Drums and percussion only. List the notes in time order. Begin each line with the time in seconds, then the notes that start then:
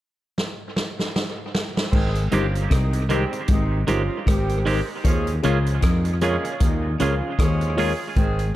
0.38 snare
0.76 snare
0.99 snare
1.16 snare
1.55 snare
1.77 snare
1.93 kick, crash
2.15 closed hi-hat
2.32 closed hi-hat
2.55 closed hi-hat
2.71 kick, cross-stick, closed hi-hat
2.93 closed hi-hat
3.10 closed hi-hat
3.33 closed hi-hat
3.48 kick, closed hi-hat
3.88 closed hi-hat
4.27 kick, cross-stick, closed hi-hat
4.49 closed hi-hat
4.66 open hi-hat
5.05 kick, closed hi-hat
5.27 closed hi-hat
5.43 closed hi-hat
5.66 closed hi-hat
5.82 kick, cross-stick, closed hi-hat
6.05 closed hi-hat
6.21 closed hi-hat
6.45 closed hi-hat
6.60 kick, closed hi-hat
7.00 closed hi-hat
7.39 kick, cross-stick, closed hi-hat
7.61 closed hi-hat
7.78 open hi-hat
8.16 kick, closed hi-hat
8.39 closed hi-hat